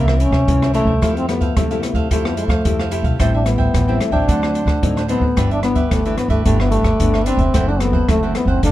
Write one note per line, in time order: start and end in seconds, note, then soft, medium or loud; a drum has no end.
0.00 0.28 C2 medium
0.00 0.46 C3 medium
0.00 0.29 E3 soft
0.00 0.29 A#3 medium
0.00 0.29 C#4 medium
0.08 0.22 A#3 medium
0.08 0.19 A#4 soft
0.08 0.20 C5 soft
0.08 0.20 E5 soft
0.08 cross-stick medium
0.20 0.74 C#4 loud
0.20 0.33 E4 soft
0.20 0.33 A#4 soft
0.20 0.32 C5 medium
0.20 0.31 E5 soft
0.20 closed hi-hat soft
0.31 0.44 C2 medium
0.31 0.60 A#4 soft
0.31 0.60 C5 medium
0.31 0.60 E5 medium
0.31 kick medium
0.31 cross-stick medium
0.47 0.83 C2 medium
0.47 1.00 G2 soft
0.47 0.71 E3 soft
0.47 0.71 A#3 soft
0.47 0.71 C#4 medium
0.47 kick medium
0.47 closed hi-hat medium
0.62 0.73 A#4 soft
0.62 0.74 C5 soft
0.62 0.74 E5 soft
0.62 cross-stick medium
0.62 closed hi-hat soft
0.73 0.92 E3 soft
0.73 1.18 A3 medium
0.73 0.92 A#3 medium
0.73 0.93 C#4 medium
0.73 0.87 E4 medium
0.73 0.87 A#4 medium
0.73 0.87 C5 medium
0.73 0.86 E5 medium
0.73 closed hi-hat soft
0.85 0.98 C2 medium
0.85 1.01 A#4 soft
0.85 1.01 C5 soft
0.85 1.00 E5 soft
0.85 kick medium
1.02 1.49 F2 medium
1.02 1.54 F3 medium
1.02 1.25 A3 medium
1.02 1.15 E4 medium
1.02 1.26 E4 medium
1.02 1.26 G4 soft
1.02 1.15 A4 medium
1.02 1.15 C5 medium
1.02 1.15 F5 medium
1.02 kick medium
1.02 cross-stick medium
1.02 closed hi-hat medium
1.16 1.28 C4 medium
1.16 1.27 A4 soft
1.16 1.28 C5 soft
1.16 1.28 F5 soft
1.16 closed hi-hat soft
1.28 1.45 A3 soft
1.28 1.59 B3 medium
1.28 1.45 E4 soft
1.28 1.45 G4 medium
1.28 muted cavaquinho stroke soft
1.28 cross-stick medium
1.28 closed hi-hat soft
1.41 1.69 A4 soft
1.41 1.69 C5 medium
1.41 1.68 F5 medium
1.41 kick medium
1.41 closed hi-hat soft
1.57 1.80 F2 medium
1.57 2.09 C3 medium
1.57 1.85 A3 medium
1.57 1.65 A3 medium
1.57 1.65 E4 soft
1.57 1.65 G4 medium
1.57 kick medium
1.57 cross-stick medium
1.57 closed hi-hat medium
1.71 2.07 A3 medium
1.71 2.07 E4 medium
1.71 2.07 G4 medium
1.71 1.82 A4 soft
1.71 1.82 C5 soft
1.71 1.82 F5 soft
1.71 closed hi-hat soft
1.82 1.97 B3 medium
1.82 muted cavaquinho stroke soft
1.82 cross-stick medium
1.82 closed hi-hat soft
1.93 2.07 F2 medium
1.93 2.10 A3 medium
1.93 2.09 A4 soft
1.93 2.09 C5 medium
1.93 2.09 F5 medium
1.93 kick medium
1.93 closed hi-hat soft
2.11 2.46 F2 medium
2.11 2.63 F3 medium
2.11 2.27 A3 medium
2.11 2.46 A3 soft
2.11 2.23 E4 medium
2.11 2.47 E4 medium
2.11 2.47 G4 medium
2.11 2.24 A4 medium
2.11 2.24 C5 medium
2.11 2.24 F5 medium
2.11 kick medium
2.11 closed hi-hat medium
2.25 2.37 B3 medium
2.25 2.37 A4 soft
2.25 2.37 C5 soft
2.25 2.37 F5 soft
2.25 cross-stick medium
2.37 2.88 A3 medium
2.37 2.50 E4 soft
2.37 2.50 A4 soft
2.37 2.49 C5 soft
2.37 2.48 F5 medium
2.37 closed hi-hat soft
2.48 2.61 F2 medium
2.48 2.78 A4 soft
2.48 2.77 C5 medium
2.48 2.77 F5 medium
2.48 kick medium
2.48 cross-stick medium
2.48 closed hi-hat soft
2.65 3.00 F2 medium
2.65 3.17 C3 soft
2.65 2.88 A3 soft
2.65 2.88 E4 soft
2.65 2.89 G4 medium
2.65 kick medium
2.65 closed hi-hat medium
2.79 2.90 A4 soft
2.79 2.91 C5 soft
2.79 2.92 F5 medium
2.79 cross-stick medium
2.91 3.17 A3 medium
2.91 3.04 E4 medium
2.91 3.17 E4 soft
2.91 3.17 G4 soft
2.91 3.05 A4 medium
2.91 3.04 C5 medium
2.91 3.03 F5 medium
2.91 closed hi-hat medium
3.02 3.16 B1 medium
3.02 3.18 A4 soft
3.02 3.18 C5 soft
3.02 3.18 F5 soft
3.02 kick medium
3.02 closed hi-hat soft
3.19 3.66 A1 medium
3.19 3.71 A2 medium
3.19 3.42 G3 soft
3.19 3.43 C4 soft
3.19 3.43 E4 medium
3.19 3.32 A4 medium
3.19 3.32 C5 medium
3.19 3.33 E5 medium
3.19 3.32 G5 medium
3.19 kick medium
3.19 cross-stick medium
3.19 closed hi-hat medium
3.33 3.48 D4 medium
3.33 3.44 C5 soft
3.33 3.45 E5 soft
3.33 3.45 G5 soft
3.45 3.83 G3 soft
3.45 4.02 B3 medium
3.45 3.83 E4 medium
3.45 muted cavaquinho stroke soft
3.45 cross-stick medium
3.45 closed hi-hat soft
3.58 3.86 C5 medium
3.58 3.86 E5 medium
3.58 3.85 G5 medium
3.58 kick medium
3.74 3.97 A1 medium
3.74 4.26 E3 soft
3.74 kick medium
3.74 cross-stick medium
3.74 closed hi-hat medium
3.88 4.11 G3 medium
3.88 4.11 C4 medium
3.88 4.11 E4 medium
3.88 3.99 C5 soft
3.88 3.99 E5 soft
3.88 3.99 G5 soft
4.00 4.12 A3 medium
4.00 muted cavaquinho stroke soft
4.00 cross-stick medium
4.00 closed hi-hat soft
4.11 4.24 A1 medium
4.11 4.64 F#3 medium
4.11 4.64 C4 medium
4.11 5.05 D4 medium
4.11 4.27 C5 soft
4.11 4.26 E5 medium
4.11 4.26 G5 medium
4.11 kick medium
4.28 4.63 D2 loud
4.28 4.80 D3 soft
4.28 4.41 D4 medium
4.28 4.41 A4 medium
4.28 4.41 C5 medium
4.28 4.41 F#5 medium
4.28 kick medium
4.28 closed hi-hat medium
4.42 4.54 A4 soft
4.42 4.54 C5 soft
4.42 4.55 F#5 soft
4.42 cross-stick medium
4.54 4.67 D4 soft
4.54 4.67 A4 soft
4.54 4.66 C5 medium
4.54 4.65 F#5 soft
4.54 closed hi-hat soft
4.66 4.79 D2 medium
4.66 4.95 A4 soft
4.66 4.95 C5 soft
4.66 4.94 F#5 medium
4.66 kick medium
4.66 cross-stick medium
4.83 5.18 D2 medium
4.83 5.34 A2 soft
4.83 4.99 F#3 soft
4.83 4.99 C4 soft
4.83 4.99 D#4 medium
4.83 kick medium
4.83 closed hi-hat medium
4.97 5.08 A4 soft
4.97 5.08 C5 soft
4.97 5.09 F#5 medium
4.97 cross-stick medium
4.97 closed hi-hat soft
5.08 5.27 F#3 soft
5.08 5.53 B3 medium
5.08 5.27 C4 soft
5.08 5.22 D4 medium
5.08 5.27 D#4 medium
5.08 5.22 A4 medium
5.08 5.21 C5 medium
5.08 5.20 F#5 medium
5.08 closed hi-hat soft
5.20 5.33 D2 medium
5.20 5.36 A4 soft
5.20 5.35 C5 soft
5.20 5.35 F#5 soft
5.20 kick medium
5.36 5.83 G1 medium
5.36 5.89 G2 medium
5.36 5.60 E3 medium
5.36 5.60 B3 medium
5.36 5.49 D4 medium
5.36 5.60 D4 medium
5.36 5.50 G4 medium
5.36 5.50 B4 medium
5.36 5.50 E5 medium
5.36 kick medium
5.36 cross-stick medium
5.36 closed hi-hat medium
5.51 5.63 D4 medium
5.51 5.63 G4 soft
5.51 5.63 B4 soft
5.51 5.63 E5 soft
5.51 closed hi-hat soft
5.63 5.80 E3 soft
5.63 5.93 B3 medium
5.63 5.80 B3 medium
5.63 5.80 D4 medium
5.63 muted cavaquinho stroke soft
5.63 cross-stick medium
5.63 closed hi-hat soft
5.75 6.04 G4 medium
5.75 6.03 B4 medium
5.75 6.03 E5 medium
5.75 kick medium
5.75 closed hi-hat soft
5.91 6.15 G1 medium
5.91 6.43 D3 soft
5.91 6.00 E3 soft
5.91 6.17 A3 medium
5.91 6.00 B3 soft
5.91 6.00 D4 medium
5.91 kick medium
5.91 cross-stick medium
5.91 closed hi-hat medium
6.05 6.42 E3 medium
6.05 6.42 B3 soft
6.05 6.42 D4 medium
6.05 6.16 G4 soft
6.05 6.16 B4 soft
6.05 6.17 E5 soft
6.05 closed hi-hat soft
6.17 6.30 B3 medium
6.17 muted cavaquinho stroke soft
6.17 cross-stick medium
6.17 closed hi-hat soft
6.28 6.42 G1 medium
6.28 6.44 A3 medium
6.28 6.44 G4 medium
6.28 6.44 B4 medium
6.28 6.44 E5 medium
6.28 kick medium
6.28 closed hi-hat soft
6.45 6.80 G1 loud
6.45 6.97 G2 medium
6.45 6.81 E3 medium
6.45 6.62 A3 medium
6.45 6.81 B3 soft
6.45 6.58 D4 medium
6.45 6.81 D4 medium
6.45 6.59 G4 medium
6.45 6.59 B4 medium
6.45 6.59 E5 medium
6.45 kick medium
6.45 closed hi-hat medium
6.60 6.71 B3 medium
6.60 6.72 G4 soft
6.60 6.72 B4 soft
6.60 6.72 E5 soft
6.60 cross-stick medium
6.71 7.27 A3 medium
6.71 6.85 D4 medium
6.71 6.86 G4 medium
6.71 6.85 B4 soft
6.71 6.84 E5 medium
6.71 closed hi-hat soft
6.83 6.96 G1 medium
6.83 7.12 B4 soft
6.83 7.12 E5 medium
6.83 kick medium
6.83 cross-stick medium
6.83 closed hi-hat soft
6.87 7.13 G4 medium
7.00 7.35 G1 medium
7.00 7.52 D3 medium
7.00 7.23 E3 soft
7.00 7.23 B3 soft
7.00 7.23 D4 medium
7.00 kick medium
7.00 closed hi-hat medium
7.14 7.26 G4 soft
7.14 7.26 B4 soft
7.14 7.27 E5 soft
7.14 cross-stick medium
7.26 7.44 E3 medium
7.26 7.44 B3 medium
7.26 7.70 C4 loud
7.26 7.39 D4 medium
7.26 7.45 D4 medium
7.26 7.39 G4 medium
7.26 7.39 B4 medium
7.26 7.38 E5 medium
7.26 closed hi-hat medium
7.37 7.50 F1 medium
7.37 7.53 G4 soft
7.37 7.53 B4 soft
7.37 7.52 E5 soft
7.37 kick medium
7.37 closed hi-hat soft
7.54 8.01 F#1 medium
7.54 8.06 F#2 medium
7.54 7.70 E3 soft
7.54 7.70 A3 medium
7.54 7.71 C4 medium
7.54 7.67 E4 medium
7.54 7.67 A4 medium
7.54 7.67 C5 medium
7.54 7.67 F#5 medium
7.54 kick medium
7.54 cross-stick medium
7.54 closed hi-hat medium
7.68 7.82 D4 medium
7.68 7.80 A4 soft
7.68 7.80 C5 soft
7.68 7.81 F#5 soft
7.80 7.97 E3 medium
7.80 7.97 A3 soft
7.80 8.10 B3 medium
7.80 7.98 C4 medium
7.80 muted cavaquinho stroke soft
7.80 cross-stick medium
7.80 closed hi-hat soft
7.93 8.21 A4 medium
7.93 8.21 C5 medium
7.93 8.20 F#5 medium
7.93 kick medium
8.09 8.32 F#1 medium
8.09 8.60 F#2 medium
8.09 8.18 E3 soft
8.09 8.37 A3 medium
8.09 8.18 A3 soft
8.09 8.18 C4 medium
8.09 kick medium
8.09 cross-stick medium
8.09 closed hi-hat medium
8.23 8.59 E3 medium
8.23 8.59 A3 medium
8.23 8.60 C4 medium
8.23 8.35 A4 soft
8.23 8.35 C5 soft
8.23 8.35 F#5 soft
8.35 8.50 B3 medium
8.35 muted cavaquinho stroke soft
8.35 cross-stick medium
8.35 closed hi-hat soft
8.45 8.59 F#1 medium
8.45 8.63 C4 medium
8.45 8.62 A4 soft
8.45 8.62 C5 medium
8.45 8.61 F#5 medium
8.45 kick medium
8.63 8.72 F1 medium
8.63 8.72 F2 medium
8.63 8.72 D#3 medium
8.63 8.72 A3 medium
8.63 8.72 D4 medium
8.63 8.72 D#4 medium
8.63 8.72 A4 medium
8.63 8.72 C5 medium
8.63 8.72 F5 medium
8.63 kick medium
8.63 closed hi-hat medium